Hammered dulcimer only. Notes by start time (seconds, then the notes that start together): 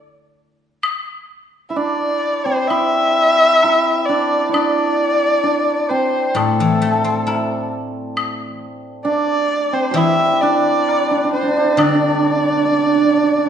1.70 E4
1.76 D4
2.45 C4
2.70 E4
3.64 E4
4.09 D4
4.49 E4
4.53 D4
5.43 D4
5.90 C4
6.36 A3
9.05 D4
9.73 C4
9.91 G4
9.97 E4
10.43 D4
11.11 D4
11.16 D4
11.24 D4
11.33 D4
11.42 D4
11.47 D4
11.57 D4
11.64 D4
11.78 D4
11.88 D4
11.95 D4
12.01 D4
12.09 D4
12.15 D4
12.23 D4
12.30 D4
12.37 D4
12.43 D4
12.50 D4
12.57 D4
12.65 D4
12.72 D4
12.79 D4
12.87 D4
12.96 D4
13.03 D4
13.10 D4
13.17 D4
13.23 D4
13.31 D4
13.38 D4
13.46 D4